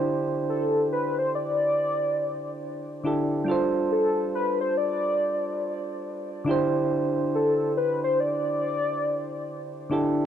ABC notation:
X:1
M:4/4
L:1/16
Q:"Swing 16ths" 1/4=70
K:Ddor
V:1 name="Soft synth lead"
z2 A2 B c d6- d z3 | z2 A2 B c d6 z4 | z2 A2 B c d6- d z3 |]
V:2 name="Synth keys"
[D,DEGc]12- [D,DEGc]2 [D,DEGA]2 | [G,DFAc]12- [G,DFAc]2 [D,DEGc]2- | [D,DEGc]12- [D,DEGc]2 [D,DEGA]2 |]